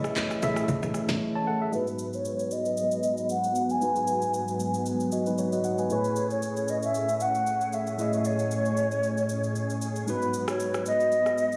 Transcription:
0.00 0.40 A1 loud
0.00 1.69 E3 medium
0.00 0.42 A3 medium
0.00 1.69 A3 medium
0.00 1.69 C#4 medium
0.00 0.43 E4 medium
0.00 0.43 G#4 medium
0.00 1.74 B4 loud
0.00 1.36 C#5 medium
0.00 1.75 D#5 loud
0.00 0.31 E5 loud
0.04 cross-stick loud
0.04 shaker medium
0.16 kick medium
0.16 clap loud
0.16 high bongo medium
0.16 low bongo medium
0.16 shaker medium
0.31 cross-stick medium
0.31 shaker medium
0.42 0.67 A1 loud
0.42 0.85 A3 medium
0.42 0.85 E4 medium
0.42 0.85 G#4 medium
0.42 0.86 E5 medium
0.42 low bongo medium
0.42 shaker medium
0.56 cross-stick loud
0.56 shaker medium
0.68 0.82 G#1 loud
0.68 kick loud
0.68 low conga medium
0.68 shaker medium
0.83 0.94 A1 medium
0.83 low bongo medium
0.83 shaker medium
0.94 cross-stick medium
0.94 shaker medium
1.09 1.20 A1 loud
1.09 kick loud
1.09 snare medium
1.09 low bongo medium
1.09 shaker medium
1.35 1.47 C#5 medium
1.35 1.46 A5 medium
1.47 1.61 A4 medium
1.47 1.61 F#5 medium
1.62 1.86 G#4 medium
1.62 1.86 E5 medium
1.72 5.86 G#2 medium
1.72 5.86 F#3 medium
1.72 3.77 G#3 medium
1.72 5.86 B3 medium
1.72 3.78 D#4 medium
1.72 3.78 F#4 medium
1.72 2.16 B4 medium
1.72 3.79 B4 medium
1.72 shaker medium
1.87 shaker soft
1.99 shaker medium
2.13 2.54 C#5 medium
2.13 shaker medium
2.25 shaker medium
2.39 shaker soft
2.51 3.30 D#5 medium
2.51 shaker medium
2.65 shaker medium
2.77 shaker medium
2.91 shaker medium
3.03 shaker medium
3.17 shaker medium
3.29 3.72 F#5 loud
3.29 shaker medium
3.44 shaker medium
3.55 shaker medium
3.70 4.75 G#5 loud
3.70 shaker soft
3.81 5.86 G#3 medium
3.81 5.09 D#4 medium
3.81 5.10 F#4 medium
3.81 5.10 B4 medium
3.81 shaker medium
3.96 shaker soft
4.07 shaker medium
4.22 shaker medium
4.34 shaker medium
4.48 shaker soft
4.60 shaker medium
4.74 shaker medium
4.86 shaker medium
5.00 shaker medium
5.12 5.26 F#4 medium
5.12 5.26 D#5 medium
5.12 shaker medium
5.26 5.38 D#4 medium
5.26 5.38 B4 medium
5.26 shaker medium
5.38 5.52 C#5 medium
5.38 shaker medium
5.52 5.64 F#4 medium
5.52 5.64 D#5 medium
5.52 shaker soft
5.64 5.78 F#5 medium
5.64 shaker medium
5.78 6.04 B4 soft
5.78 6.04 G#5 medium
5.78 shaker medium
5.89 10.04 A2 medium
5.89 7.94 A3 medium
5.89 10.04 C#4 medium
5.89 7.95 E4 medium
5.89 10.04 G#4 medium
5.89 7.95 G#4 medium
5.89 6.28 B4 medium
5.89 7.96 C#5 medium
5.89 shaker medium
6.04 shaker soft
6.16 shaker medium
6.30 6.71 C#5 medium
6.30 shaker medium
6.42 shaker medium
6.57 shaker medium
6.68 6.83 D#5 loud
6.68 shaker medium
6.83 7.23 E5 loud
6.83 shaker medium
6.94 shaker medium
7.09 shaker medium
7.20 7.76 F#5 loud
7.20 shaker medium
7.35 shaker medium
7.47 shaker medium
7.61 shaker medium
7.73 8.28 E5 loud
7.73 shaker medium
7.87 shaker soft
7.98 10.03 A3 medium
7.98 10.04 E4 medium
7.98 10.04 G#4 medium
7.98 10.05 D#5 medium
7.98 shaker medium
8.13 shaker soft
8.25 9.82 C#5 medium
8.25 shaker medium
8.39 shaker medium
8.51 shaker medium
8.65 shaker medium
8.77 shaker medium
8.91 shaker medium
9.03 shaker medium
9.17 shaker medium
9.29 shaker medium
9.44 shaker medium
9.55 shaker medium
9.70 shaker soft
9.82 shaker medium
9.96 shaker medium
10.07 11.57 G#2 medium
10.07 11.57 F#3 medium
10.07 11.57 G#3 medium
10.07 11.57 B3 medium
10.07 11.57 D#4 medium
10.07 11.57 F#4 medium
10.07 10.46 B4 medium
10.07 11.57 B4 medium
10.07 shaker medium
10.22 shaker soft
10.34 shaker medium
10.48 10.84 C#5 medium
10.48 cross-stick loud
10.48 shaker medium
10.60 shaker medium
10.74 cross-stick medium
10.74 shaker medium
10.86 11.57 D#5 loud
10.86 shaker medium
11.00 shaker medium
11.12 shaker medium
11.26 cross-stick medium
11.26 shaker medium
11.38 shaker medium
11.52 shaker medium

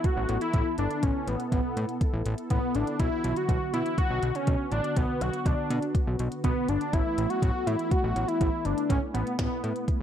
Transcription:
0.00 2.96 B3 medium
0.00 2.96 E4 medium
0.00 2.96 A4 medium
0.04 0.41 F#4 loud
0.04 kick loud
0.04 closed hi-hat medium
0.17 0.26 A1 medium
0.29 0.38 A1 loud
0.29 closed hi-hat medium
0.41 0.76 E4 loud
0.41 closed hi-hat medium
0.54 0.63 A1 loud
0.54 kick loud
0.54 closed hi-hat medium
0.78 0.87 G1 medium
0.78 1.04 D4 medium
0.78 closed hi-hat medium
0.91 closed hi-hat soft
1.03 1.12 A1 loud
1.03 1.29 C#4 medium
1.03 kick loud
1.03 closed hi-hat medium
1.27 1.37 A1 loud
1.27 1.52 B3 medium
1.27 closed hi-hat medium
1.40 closed hi-hat soft
1.52 1.61 A1 loud
1.52 1.98 B3 medium
1.52 kick loud
1.52 closed hi-hat medium
1.77 1.86 A2 loud
1.77 closed hi-hat medium
1.89 closed hi-hat soft
2.01 kick loud
2.01 closed hi-hat medium
2.13 2.23 A1 medium
2.26 2.35 A1 loud
2.26 closed hi-hat medium
2.38 closed hi-hat medium
2.50 2.60 A1 medium
2.50 2.77 B3 medium
2.50 kick loud
2.50 closed hi-hat medium
2.75 2.84 A1 medium
2.75 2.99 D4 medium
2.75 closed hi-hat medium
2.87 closed hi-hat soft
3.00 3.09 B1 loud
3.00 6.89 D3 medium
3.00 6.89 B3 medium
3.00 3.38 E4 loud
3.00 6.89 F#4 medium
3.00 kick loud
3.00 closed hi-hat medium
3.24 3.33 B1 loud
3.24 closed hi-hat medium
3.36 3.73 F#4 loud
3.36 closed hi-hat soft
3.49 3.58 B1 medium
3.49 kick loud
3.49 closed hi-hat medium
3.73 3.83 B2 medium
3.73 3.97 E4 loud
3.73 closed hi-hat medium
3.86 closed hi-hat soft
3.98 4.37 F#4 loud
3.98 kick loud
3.98 closed hi-hat medium
4.10 4.20 B1 medium
4.23 4.32 B1 medium
4.23 closed hi-hat medium
4.35 4.71 C#4 medium
4.35 closed hi-hat medium
4.47 4.56 B1 loud
4.47 kick loud
4.47 closed hi-hat medium
4.72 4.81 A1 medium
4.72 4.98 D4 medium
4.72 closed hi-hat medium
4.84 closed hi-hat soft
4.96 5.06 B1 loud
4.96 5.23 B3 medium
4.96 kick loud
4.96 closed hi-hat medium
5.21 5.30 B1 medium
5.21 5.48 F#4 medium
5.21 closed hi-hat medium
5.34 closed hi-hat soft
5.46 5.55 B1 loud
5.46 5.95 D4 medium
5.46 kick loud
5.46 closed hi-hat medium
5.70 5.79 B2 loud
5.70 closed hi-hat medium
5.83 closed hi-hat soft
5.95 kick loud
5.95 closed hi-hat medium
6.07 6.16 B1 medium
6.19 6.29 B1 medium
6.19 closed hi-hat medium
6.32 closed hi-hat medium
6.44 6.53 B1 loud
6.44 6.70 B3 medium
6.44 kick loud
6.44 closed hi-hat medium
6.68 6.78 G1 medium
6.68 6.95 D4 medium
6.68 closed hi-hat medium
6.81 closed hi-hat soft
6.93 7.02 A1 loud
6.93 10.02 A3 medium
6.93 10.02 B3 medium
6.93 7.31 E4 loud
6.93 10.02 E4 medium
6.93 kick loud
6.93 closed hi-hat medium
7.18 7.27 A1 loud
7.18 closed hi-hat medium
7.30 7.68 F#4 loud
7.30 closed hi-hat soft
7.42 7.51 A1 loud
7.42 kick loud
7.42 closed hi-hat medium
7.67 7.76 A2 medium
7.67 7.92 E4 loud
7.67 closed hi-hat medium
7.79 closed hi-hat soft
7.91 8.29 F#4 loud
7.91 kick loud
7.91 closed hi-hat medium
8.04 8.13 A1 medium
8.16 8.25 A1 loud
8.16 closed hi-hat medium
8.28 8.67 E4 loud
8.28 closed hi-hat medium
8.41 8.50 A1 loud
8.41 kick loud
8.41 closed hi-hat medium
8.65 8.74 G1 medium
8.65 8.89 D4 medium
8.65 closed hi-hat medium
8.78 closed hi-hat soft
8.89 8.99 A1 loud
8.89 9.00 C#4 medium
8.89 kick loud
8.89 closed hi-hat medium
9.14 9.24 A1 loud
9.14 9.37 B3 medium
9.14 closed hi-hat medium
9.27 closed hi-hat soft
9.39 9.48 A1 loud
9.39 9.85 B3 medium
9.39 kick loud
9.39 snare loud
9.39 closed hi-hat medium
9.64 9.73 A2 medium
9.64 closed hi-hat medium
9.76 closed hi-hat soft
9.88 kick loud
9.88 closed hi-hat medium

